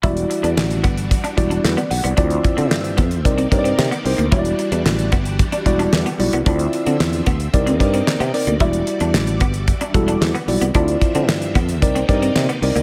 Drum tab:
HH |xxxx-xxxxxxx-xox|xxxx-xxxxxxx-xox|xxxx-xxxxxxx-xox|xxxx-xxxxxxx-xox|
CP |----x-------x---|----x-------x---|----x-------x---|----x-------x---|
SD |----o-------o---|----o-------o---|----o-------o---|----o-------o---|
BD |o-----o-o-o-----|o-o---o-o-o-----|o-----o-o-o-----|o-----o-o-o-----|

HH |xxxx-xxxxxxx-xox|xxxx-xxxxxxx-xox|
CP |----x-------x---|----x-------x---|
SD |----o-------o---|----o-------o---|
BD |o-----o-o-o-----|o-o---o-o-o-----|